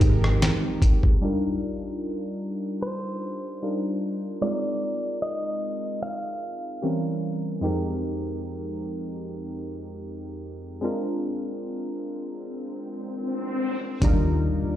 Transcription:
Already playing: F3 G#3 C4 D#4 G4 A#4
0.01 G#1, kick, closed hi-hat
0.24 cross-stick
0.42 snare, closed hi-hat
0.82 kick, closed hi-hat
1.03 kick
1.21 G3 D4 D#4 F4 A#4
2.83 C5
3.62 G3 D4 D#4 F4 A#4
4.41 G#3 C4 D#4 F4 A#4 D5
5.22 D#5
6.03 F5
6.82 E3 G3 C4 C#4 A#4
7.61 F2 G#3 C4 D#4 G4 A#4
10.81 G#3 C4 D4 F4 A#4, swell
14.01 D#2 D#3 G3 A#3 D4 D#4 F4 G4 A#4 D5, kick, closed hi-hat
14.63 muted fingered electric bass stroke

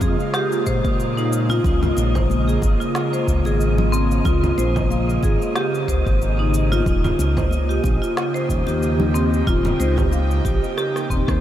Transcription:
Already playing: C#3 G#3 A#3 F4 D#5
0.01 F2 G#4, kick, muted conga, low conga, shaker
0.20 shaker
0.34 G4, snare, shaker
0.52 shaker
0.67 A#1 C5, kick, shaker
0.84 A#2, kick, high conga, shaker
1.00 shaker
1.17 D#4, shaker
1.33 shaker
1.50 F4, high conga, shaker
1.64 C#2, kick, low conga, shaker
1.83 F4, muted conga, low conga, shaker
1.97 A#1, muted conga, shaker
2.15 C5, kick, low conga, shaker
2.30 high conga, shaker
2.48 G#4, shaker
2.62 G#1, kick, muted conga, shaker
2.80 F4, shaker
2.95 snare, shaker
3.13 C5, shaker
3.27 C#2, kick, shaker
3.45 G#1 G#4, muted conga, shaker
3.61 shaker
3.78 high conga, low conga
3.92 C4, shaker
4.11 shaker
4.25 C#2 F4, kick, low conga, shaker
4.43 muted conga, low conga, shaker
4.58 A#1 C5, muted conga, shaker
4.76 kick, low conga, shaker
4.90 F5, high conga, shaker
5.09 shaker
5.23 G#1 G#4, kick, muted conga, shaker
5.42 shaker
5.56 G4, snare, shaker
5.75 shaker
5.88 C#2 C5, kick, shaker
6.06 G#1, kick, high conga, shaker
6.22 shaker
6.39 D#4
6.54 shaker
6.72 F4, high conga, shaker
6.86 D#1, kick, low conga, shaker
7.04 F4, muted conga, low conga, shaker
7.19 C#2, muted conga, shaker
7.37 C5, kick, low conga, shaker
7.51 G4, high conga, shaker
7.69 G4, shaker
7.79 D#4
7.84 A#1, kick, muted conga, shaker
8.02 F4, shaker
8.17 snare, shaker
8.34 C5, shaker
8.49 D#1, kick, shaker
8.67 D#2 G4, muted conga, shaker
8.83 shaker
8.99 high conga, low conga
9.14 C4, shaker
9.34 shaker
9.47 D#1 F4, kick, low conga, shaker
9.65 muted conga, low conga, shaker
9.80 C#2 C5, muted conga, shaker
9.97 kick, high conga, low conga, shaker
10.11 F5, high conga, shaker
10.31 shaker
10.45 A#1 G4, kick, muted conga, shaker
10.64 shaker
10.78 G4, cross-stick, shaker
10.96 cross-stick, shaker
11.10 D#1 C4, kick, shaker
11.28 D#2 C5, kick, cross-stick, high conga, shaker

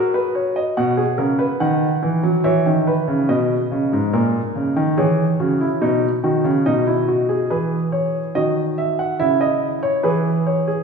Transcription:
Already playing: F#4 A#4
0.14 B4
0.35 C#5
0.56 D#5
0.77 B2 F#4 F#5
0.97 G#4
1.18 C#3 A#4
1.39 B4
1.60 D#3 F#5
2.02 E3
2.23 F#3
2.44 E3 C#5 E5
2.66 D#3
2.87 B4
3.08 C#3
3.29 B2 D#5
3.71 C#3
3.93 G#2
4.13 A#2 A#4
4.55 C#3
4.76 D#3
4.98 E3 G#4 C#5
5.40 C#3 F#4
5.61 E4
5.81 B2 D#4
6.24 D#3 F#4
6.44 C#3
6.66 B2 D#4 D#5
6.87 E4
7.08 F#4
7.29 G#4
7.50 E3 G#4 B4
7.92 C#5
8.35 D#3 F#4 D#5
8.78 E5
8.99 F#5
9.20 C#3 E4 E5
9.41 D#5
9.83 C#5
10.03 E3 G#4 B4
10.47 C#5
10.68 G#4

